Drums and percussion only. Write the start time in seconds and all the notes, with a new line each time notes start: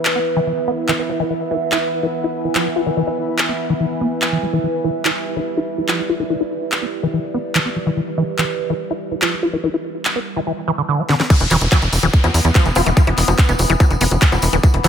0.05 clap
0.88 clap
1.72 clap
2.55 clap
3.38 clap
4.22 clap
5.05 clap
5.88 clap
6.72 clap
7.55 clap
8.38 clap
9.22 clap
10.05 clap
11.09 snare
11.20 snare
11.30 kick, closed hi-hat, crash, tambourine
11.41 closed hi-hat
11.50 clap, open hi-hat, tambourine, high bongo
11.61 closed hi-hat, tambourine
11.72 kick, clap, closed hi-hat, tambourine, high bongo
11.82 closed hi-hat, tambourine
11.93 open hi-hat, tambourine
12.03 closed hi-hat, tambourine, high bongo
12.13 kick, closed hi-hat, tambourine
12.24 closed hi-hat, tambourine, high bongo
12.34 open hi-hat, tambourine
12.45 closed hi-hat, tambourine
12.55 kick, clap, closed hi-hat, tambourine, high bongo
12.66 closed hi-hat, tambourine
12.75 open hi-hat, tambourine, high bongo
12.86 closed hi-hat, tambourine
12.97 kick, closed hi-hat, tambourine
13.07 closed hi-hat, high bongo
13.18 clap, open hi-hat, tambourine
13.28 closed hi-hat, tambourine, high bongo
13.38 kick, clap, closed hi-hat, tambourine
13.49 closed hi-hat, tambourine
13.59 open hi-hat, tambourine, high bongo
13.70 closed hi-hat
13.80 kick, closed hi-hat, tambourine, high bongo
13.90 closed hi-hat, tambourine
14.01 open hi-hat, tambourine
14.11 closed hi-hat, tambourine, high bongo
14.22 kick, clap, closed hi-hat, tambourine
14.32 closed hi-hat, tambourine, high bongo
14.42 open hi-hat, tambourine
14.52 closed hi-hat, tambourine
14.63 kick, closed hi-hat, tambourine, high bongo
14.74 closed hi-hat
14.84 clap, open hi-hat, tambourine, high bongo